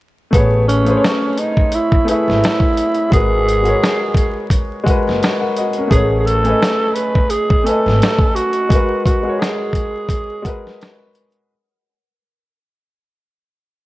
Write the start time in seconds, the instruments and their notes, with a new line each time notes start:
0.31 upright bass A1, upright piano A3 G#4, tenor saxophone B3, kick, closed hi-hat
0.35 upright piano B4 C#5
0.68 tenor saxophone C#4, closed hi-hat
0.84 upright piano A3 G#4, closed hi-hat
0.88 upright piano B4 C5
0.97 upright piano C#5
1.04 snare, closed hi-hat
1.38 tenor saxophone D#4, closed hi-hat
1.57 kick
1.72 tenor saxophone E4, closed hi-hat
1.92 kick
2.05 upright piano A3 G#4, closed hi-hat
2.09 tenor saxophone E4, upright piano B4 E5
2.28 upright bass G#1, snare
2.44 snare, closed hi-hat
2.60 kick
2.77 closed hi-hat
2.94 closed hi-hat
3.10 upright bass G#1, upright piano G#3 F#4 A#4, tenor saxophone G#4, kick, closed hi-hat
3.16 upright piano B4
3.49 closed hi-hat
3.62 upright piano G#3 F#4, closed hi-hat
3.66 upright piano A#4 C#5
3.84 snare, closed hi-hat
4.14 kick, closed hi-hat
4.50 kick, closed hi-hat
4.84 upright piano G#3 F#4, kick, closed hi-hat
4.88 upright piano A#4 B4
5.07 upright bass F#1, snare
5.23 snare, closed hi-hat
5.41 upright piano A#4 F#5
5.57 upright piano F#4 D#5, closed hi-hat
5.73 closed hi-hat
5.78 upright piano C#4 A#4
5.88 upright piano A3 G#4 B4, tenor saxophone G#4, kick
5.92 upright bass A1, upright piano C#5, closed hi-hat
6.20 tenor saxophone G#4
6.26 tenor saxophone A4, closed hi-hat
6.44 upright piano A3 G#5, closed hi-hat
6.48 upright piano B4 D#5
6.63 snare, closed hi-hat
6.94 tenor saxophone B4, closed hi-hat
7.15 kick
7.30 tenor saxophone G#4, closed hi-hat
7.50 kick
7.64 upright piano A3 B4 G#5, tenor saxophone A4, closed hi-hat
7.70 upright piano D#5
7.86 upright bass G#1, snare
8.02 snare, closed hi-hat
8.18 kick
8.35 tenor saxophone F#4, closed hi-hat
8.53 closed hi-hat
8.69 upright piano G#3 F#4 A#4, kick, closed hi-hat
8.75 upright piano B4
9.05 tenor saxophone F#4, kick, closed hi-hat
9.23 upright piano G#3 F#4
9.27 upright piano A#4 C#5
9.39 tenor saxophone G#4, snare
9.44 closed hi-hat
9.73 kick, closed hi-hat
10.09 kick, closed hi-hat
10.42 upright piano G#3 F#4, kick, closed hi-hat
10.46 upright piano A#4 B4
10.67 snare
10.81 snare, closed hi-hat
11.15 closed hi-hat
11.32 closed hi-hat